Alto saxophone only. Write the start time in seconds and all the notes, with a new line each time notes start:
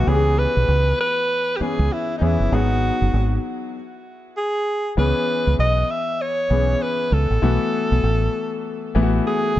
0.08 G#4
0.39 B4
1.01 B4
1.56 G4
1.62 G#4
1.93 E4
2.18 D#4
2.23 E4
2.54 F#4
4.37 G#4
4.99 B4
5.60 D#5
5.91 E5
6.21 C#5
6.82 B4
7.13 A4
9.27 G#4